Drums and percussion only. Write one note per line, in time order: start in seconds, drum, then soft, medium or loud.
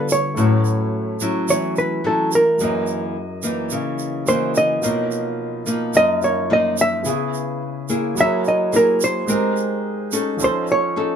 0.09 shaker medium
0.37 shaker soft
0.65 shaker soft
1.20 shaker medium
1.48 shaker medium
1.76 shaker soft
2.32 shaker medium
2.59 shaker medium
2.87 shaker soft
3.43 shaker medium
3.70 shaker medium
3.99 shaker soft
4.27 shaker medium
4.55 shaker medium
4.83 shaker medium
5.11 shaker soft
5.67 shaker medium
5.94 shaker medium
6.22 shaker soft
6.78 shaker medium
7.05 shaker medium
7.34 shaker soft
7.89 shaker medium
8.17 shaker medium
8.45 shaker soft
8.73 shaker soft
9.01 shaker medium
9.28 shaker medium
9.57 shaker soft
10.12 shaker medium
10.40 shaker medium
10.67 shaker soft